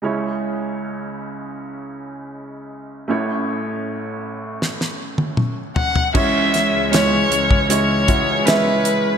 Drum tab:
CC |----------------|----------------|x---------------|
HH |----------------|----------------|--x-x-x-x-x-x-x-|
SD |----------------|--------oo------|--o-o-------o---|
T1 |----------------|-----------o----|----------------|
T2 |----------------|------------o---|----------------|
FT |----------------|--------------oo|----------------|
BD |----------------|----------------|o------o--o-----|